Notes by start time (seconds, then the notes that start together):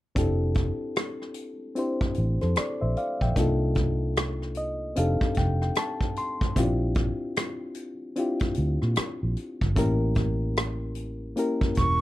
0.15 F1 C4 D4 E4 G4 A4, kick, closed hi-hat
0.54 kick, closed hi-hat
0.96 cross-stick, closed hi-hat
1.22 cross-stick
1.34 closed hi-hat
1.75 C4 D4 E4 G4 C5, closed hi-hat
2.01 kick
2.14 A1, closed hi-hat
2.41 F2 A4 C5, cross-stick, closed hi-hat
2.56 D5, muted fingered electric bass stroke, cross-stick, closed hi-hat
2.81 A#1 C5 E5
2.97 D5 F5, closed hi-hat
3.21 A#1 E5 G5, kick
3.36 C2 A#3 D4 D#4 F4 A4, kick, closed hi-hat
3.75 kick, closed hi-hat
4.17 cross-stick, closed hi-hat
4.42 cross-stick
4.55 D#5, closed hi-hat
4.96 F1 C4 D4 D#4 G4 A4 F5, closed hi-hat
5.21 muted fingered electric bass stroke, kick
5.35 F1 G5, kick, closed hi-hat
5.62 G5, cross-stick
5.75 A5, cross-stick, closed hi-hat
6.01 kick
6.16 C6, closed hi-hat
6.41 kick
6.56 A#1 C4 C#4 E4 F4 G4, kick, closed hi-hat
6.63 D4
6.95 kick, closed hi-hat
7.36 cross-stick, closed hi-hat
7.75 closed hi-hat
8.16 C4 D4 E4 F4 G4, closed hi-hat
8.39 kick, closed hi-hat
8.54 D2, closed hi-hat
8.82 A#2, cross-stick
8.96 muted fingered electric bass stroke, cross-stick, closed hi-hat
9.23 A#1
9.37 closed hi-hat
9.61 G1, kick
9.76 A1 A#3 C#4 E4 G4 A#4, kick, closed hi-hat
10.15 kick, closed hi-hat
10.57 cross-stick, closed hi-hat
10.95 closed hi-hat
11.36 A#3 C#4 E4 G4 A#4, closed hi-hat
11.61 muted fingered electric bass stroke, kick
11.75 E1 C#6, kick, closed hi-hat